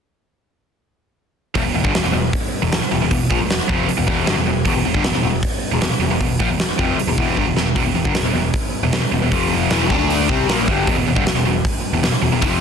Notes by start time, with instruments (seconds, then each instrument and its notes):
1.55 picked electric bass E1, overdriven electric guitar E2 B2, kick, open hi-hat
1.65 picked electric bass E1, overdriven electric guitar E2 B2
1.74 picked electric bass E1, overdriven electric guitar E2 B2
1.83 picked electric bass G1, overdriven electric guitar G2 D3, kick
1.94 picked electric bass E1, overdriven electric guitar E2 B2, snare, open hi-hat
2.03 picked electric bass E1, overdriven electric guitar E2 B2, snare
2.12 picked electric bass E1, overdriven electric guitar E2 B2
2.33 kick, open hi-hat
2.62 picked electric bass E1, overdriven electric guitar E2 B2
2.72 picked electric bass E1, overdriven electric guitar E2 B2, snare, open hi-hat
2.81 muted overdriven electric guitar stroke, muted picked electric bass stroke, muted distorted electric guitar stroke
2.91 picked electric bass E1, overdriven electric guitar E2 B2
3.01 picked electric bass E1, overdriven electric guitar E2 B2
3.11 picked electric bass E1, overdriven electric guitar E2 B2, kick, open hi-hat
3.31 picked electric bass A#1, overdriven electric guitar A#2 F3, kick
3.41 picked electric bass E1, overdriven electric guitar E2 B2
3.50 snare, open hi-hat
3.60 snare
3.69 picked electric bass F1, overdriven electric guitar F2 C3 F3, kick
3.88 muted distorted electric guitar stroke, muted overdriven electric guitar stroke, muted picked electric bass stroke, open hi-hat
3.98 picked electric bass E1, overdriven electric guitar E2 B2
4.07 picked electric bass E1, overdriven electric guitar E2 B2 E3, kick
4.27 picked electric bass G1, overdriven electric guitar G2 D3, snare, open hi-hat
4.37 picked electric bass E1, overdriven electric guitar E2 B2
4.47 picked electric bass E1, overdriven electric guitar E2 B2
4.65 picked electric bass E1, overdriven electric guitar E2 B2, kick, open hi-hat
4.75 picked electric bass E1, overdriven electric guitar E2 B2
4.85 picked electric bass E1, overdriven electric guitar E2 B2
4.94 picked electric bass G1, overdriven electric guitar G2 D3, kick
5.04 picked electric bass E1, overdriven electric guitar E2 B2, snare, open hi-hat
5.13 picked electric bass E1, overdriven electric guitar E2 B2, snare
5.23 picked electric bass E1, overdriven electric guitar E2 B2
5.43 kick, open hi-hat
5.72 picked electric bass E1, overdriven electric guitar E2 B2
5.81 picked electric bass E1, overdriven electric guitar E2 B2, snare, open hi-hat
5.91 muted distorted electric guitar stroke, muted picked electric bass stroke, muted overdriven electric guitar stroke
5.99 picked electric bass E1, overdriven electric guitar E2 B2
6.09 picked electric bass E1, overdriven electric guitar E2 B2
6.20 picked electric bass E1, overdriven electric guitar E2 B2, kick, open hi-hat
6.40 picked electric bass A#1, overdriven electric guitar A#2 F3, kick
6.48 picked electric bass E1, overdriven electric guitar E2 B2
6.60 snare, open hi-hat
6.70 snare
6.78 picked electric bass F1, overdriven electric guitar F2 C3 F3, kick
6.97 muted picked electric bass stroke, muted overdriven electric guitar stroke, muted distorted electric guitar stroke, open hi-hat
7.07 picked electric bass E1, overdriven electric guitar E2 B2
7.18 picked electric bass E1, overdriven electric guitar E2 B2 E3, kick
7.37 picked electric bass G1, overdriven electric guitar G2 D3, kick
7.46 picked electric bass E1, overdriven electric guitar E2 B2
7.55 picked electric bass E1, overdriven electric guitar E2 B2, snare
7.75 picked electric bass E1, overdriven electric guitar E2 B2, kick, open hi-hat
7.85 picked electric bass E1, overdriven electric guitar E2 B2
7.94 picked electric bass E1, overdriven electric guitar E2 B2
8.05 picked electric bass G1, overdriven electric guitar G2 D3, kick
8.14 picked electric bass E1, overdriven electric guitar E2 B2, snare, open hi-hat
8.24 picked electric bass E1, overdriven electric guitar E2 B2
8.33 picked electric bass E1, overdriven electric guitar E2 B2
8.54 kick, open hi-hat
8.83 picked electric bass E1, overdriven electric guitar E2 B2
8.93 picked electric bass E1, overdriven electric guitar E2 B2, snare, open hi-hat
9.02 muted distorted electric guitar stroke, muted overdriven electric guitar stroke, muted picked electric bass stroke
9.12 picked electric bass E1, overdriven electric guitar E2 B2
9.22 picked electric bass E1, overdriven electric guitar E2 B2
9.32 picked electric bass F1, overdriven electric guitar F2 C3 F3, kick, open hi-hat
9.70 picked electric bass E1, overdriven electric guitar E2 B2 E3, snare, open hi-hat
9.90 picked electric bass D2, overdriven electric guitar D3 A3 D4, kick
10.10 open hi-hat
10.29 picked electric bass C2, overdriven electric guitar C3 G3 C4, kick
10.47 picked electric bass A#1, overdriven electric guitar A#2 F3 A#3, snare, open hi-hat
10.68 overdriven electric guitar G2 D3 G3, kick
10.87 picked electric bass E1, overdriven electric guitar E2 B2, kick, open hi-hat
10.95 picked electric bass E1, overdriven electric guitar E2 B2
11.05 picked electric bass E1, overdriven electric guitar E2 B2
11.16 picked electric bass G1, overdriven electric guitar G2 D3, kick
11.24 picked electric bass E1, overdriven electric guitar E2 B2, snare, open hi-hat
11.35 picked electric bass E1, overdriven electric guitar E2 B2, snare
11.44 picked electric bass E1, overdriven electric guitar E2 B2
11.65 kick, open hi-hat
11.92 picked electric bass E1, overdriven electric guitar E2 B2
12.02 picked electric bass E1, overdriven electric guitar E2 B2, snare, open hi-hat
12.12 muted picked electric bass stroke, muted distorted electric guitar stroke, muted overdriven electric guitar stroke
12.22 picked electric bass E1, overdriven electric guitar E2 B2
12.32 picked electric bass E1, overdriven electric guitar E2 B2
12.41 picked electric bass F1, overdriven electric guitar F2 C3 F3, kick, open hi-hat